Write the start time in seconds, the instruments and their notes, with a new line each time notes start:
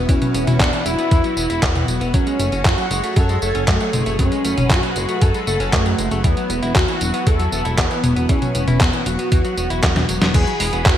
Already playing: analog synth lead B3, string machine B3 E4 F#4
0.09 analog synth bass E2, clean electric guitar E3, analog synth lead C#4, kick, closed hi-hat, tambourine
0.22 clean electric guitar F#3, closed hi-hat, high tom, tambourine
0.34 analog synth bass E1, clean electric guitar B3, closed hi-hat, tambourine
0.47 analog synth bass E1, clean electric guitar E4, closed hi-hat, high tom, tambourine
0.60 analog synth bass E2, analog synth lead D4, clean electric guitar F#4, kick, clap, closed hi-hat, tambourine
0.73 clean electric guitar E3, closed hi-hat, tambourine
0.86 analog synth bass E1, clean electric guitar F#3, analog synth lead E4, closed hi-hat, tambourine
0.99 clean electric guitar B3, closed hi-hat, tambourine
1.11 analog synth bass E2, clean electric guitar E3, kick, closed hi-hat, tambourine
1.24 clean electric guitar F#3, closed hi-hat, tambourine
1.37 analog synth bass E1, clean electric guitar B3, tambourine
1.50 analog synth bass E1, clean electric guitar E4, closed hi-hat, tambourine
1.62 analog synth bass E2, analog synth lead B3, clean electric guitar F#4, kick, clap, closed hi-hat, tambourine
1.75 clean electric guitar E3, closed hi-hat, high tom, tambourine
1.88 analog synth bass E1, clean electric guitar F#3, closed hi-hat, tambourine
2.01 analog synth bass E1, clean electric guitar B3, closed hi-hat, tambourine
2.14 analog synth bass F#2, string machine F#3 G#4 C#5, clean electric guitar F#3, analog synth lead C#4, kick, closed hi-hat, tambourine
2.27 clean electric guitar G#3, closed hi-hat, tambourine
2.39 analog synth bass F#1, clean electric guitar A3, closed hi-hat, tambourine
2.52 analog synth bass F#1, clean electric guitar C#4, closed hi-hat, tambourine
2.65 analog synth bass F#2, analog synth lead F#4, clean electric guitar F#4, kick, clap, closed hi-hat, tambourine
2.78 clean electric guitar F#3, closed hi-hat, tambourine
2.91 analog synth bass F#1, clean electric guitar G#3, closed hi-hat, tambourine
3.04 clean electric guitar A3, closed hi-hat, tambourine
3.16 analog synth bass F#2, clean electric guitar F#3, analog synth lead A4, kick, closed hi-hat, tambourine
3.29 clean electric guitar G#3, closed hi-hat, tambourine
3.42 analog synth bass F#1, clean electric guitar A3, analog synth lead A4, tambourine
3.55 analog synth bass F#1, clean electric guitar C#4, closed hi-hat, tambourine
3.68 analog synth bass F#2, analog synth lead A3, clean electric guitar F#4, kick, clap, closed hi-hat, tambourine
3.80 clean electric guitar F#3, closed hi-hat, tambourine
3.93 analog synth bass F#1, clean electric guitar G#3, closed hi-hat, high tom, tambourine
4.06 analog synth bass F#1, clean electric guitar A3, closed hi-hat, tambourine
4.19 analog synth bass F#2, clean electric guitar F#3, analog synth lead C#4, string machine B4, kick, closed hi-hat, tambourine
4.32 clean electric guitar G#3, closed hi-hat, tambourine
4.45 analog synth bass F#1, clean electric guitar A3, closed hi-hat, tambourine
4.57 analog synth bass F#1, clean electric guitar C#4, closed hi-hat, high tom, tambourine
4.70 analog synth bass F#2, clean electric guitar F#4, analog synth lead F#4, kick, clap, closed hi-hat, tambourine
4.83 clean electric guitar F#3, closed hi-hat, tambourine
4.96 analog synth bass F#1, clean electric guitar G#3, closed hi-hat, tambourine
5.09 clean electric guitar A3, closed hi-hat, tambourine
5.22 analog synth bass F#2, clean electric guitar F#3, analog synth lead A4, kick, closed hi-hat, tambourine
5.34 clean electric guitar G#3, closed hi-hat, tambourine
5.47 analog synth bass F#1, clean electric guitar A3, analog synth lead A4, tambourine
5.60 analog synth bass F#1, clean electric guitar C#4, closed hi-hat, tambourine
5.73 analog synth bass F#2, analog synth lead A3, clean electric guitar F#4, kick, clap, closed hi-hat, tambourine
5.86 clean electric guitar F#3, closed hi-hat, tambourine
5.98 analog synth bass F#1, clean electric guitar G#3, closed hi-hat, tambourine
6.11 analog synth bass F#1, clean electric guitar A3, closed hi-hat, tambourine
6.24 analog synth bass E2, clean electric guitar E3, string machine B3 E4, analog synth lead B3, kick, closed hi-hat, tambourine
6.37 clean electric guitar F#3, closed hi-hat, tambourine
6.50 analog synth bass E1, clean electric guitar B3, closed hi-hat, tambourine
6.63 analog synth bass E1, clean electric guitar E4, closed hi-hat, tambourine
6.75 analog synth bass E2, clean electric guitar F#4, analog synth lead F#4, kick, clap, closed hi-hat, tambourine
6.88 clean electric guitar E3, closed hi-hat, tambourine
7.01 analog synth bass E1, clean electric guitar F#3, closed hi-hat, tambourine
7.14 clean electric guitar B3, closed hi-hat, tambourine
7.27 analog synth bass E2, clean electric guitar E3, analog synth lead A4, kick, closed hi-hat, tambourine
7.39 clean electric guitar F#3, closed hi-hat, tambourine
7.52 analog synth bass E1, clean electric guitar B3, analog synth lead A4, tambourine
7.65 analog synth bass E1, clean electric guitar E4, closed hi-hat, tambourine
7.78 analog synth bass E2, analog synth lead B3, clean electric guitar F#4, kick, clap, closed hi-hat, tambourine
7.91 clean electric guitar E3, closed hi-hat, tambourine
8.03 analog synth bass E1, clean electric guitar F#3, closed hi-hat, high tom, tambourine
8.16 analog synth bass E1, clean electric guitar B3, closed hi-hat, tambourine
8.29 analog synth bass E2, clean electric guitar E3, analog synth lead C#4, string machine F#4, kick, closed hi-hat, tambourine
8.42 clean electric guitar F#3, closed hi-hat, high tom, tambourine
8.55 analog synth bass E1, clean electric guitar B3, closed hi-hat, tambourine
8.68 analog synth bass E1, clean electric guitar E4, closed hi-hat, high tom, tambourine
8.80 analog synth bass E2, analog synth lead B3, clean electric guitar F#4, kick, clap, closed hi-hat, tambourine
8.93 clean electric guitar E3, closed hi-hat, tambourine
9.06 analog synth bass E1, clean electric guitar F#3, analog synth lead F#4, closed hi-hat, tambourine
9.19 clean electric guitar B3, closed hi-hat, tambourine
9.32 analog synth bass E2, clean electric guitar E3, kick, closed hi-hat, tambourine
9.45 clean electric guitar F#3, closed hi-hat, tambourine
9.57 analog synth bass E1, clean electric guitar B3, closed hi-hat, tambourine
9.70 analog synth bass E1, clean electric guitar E4, closed hi-hat, tambourine
9.83 analog synth bass E2, clean electric guitar F#4, kick, snare, clap, closed hi-hat, tambourine
9.96 clean electric guitar E3, snare, closed hi-hat, high tom, tambourine
10.09 analog synth bass E1, clean electric guitar F#3, closed hi-hat, tambourine
10.22 analog synth bass E1, clean electric guitar B3, snare, closed hi-hat, tambourine
10.34 analog synth bass E2, clean electric guitar E3, string machine E3 E4 F#4 G#4 B4, analog synth lead G#4, kick, closed hi-hat, crash, tambourine
10.47 clean electric guitar F#3, closed hi-hat
10.60 analog synth bass E1, clean electric guitar G#3, open hi-hat, tambourine
10.73 analog synth bass E1, clean electric guitar B3, closed hi-hat, tambourine
10.86 analog synth bass E2, clean electric guitar E3, analog synth lead F#4, kick, clap, closed hi-hat, tambourine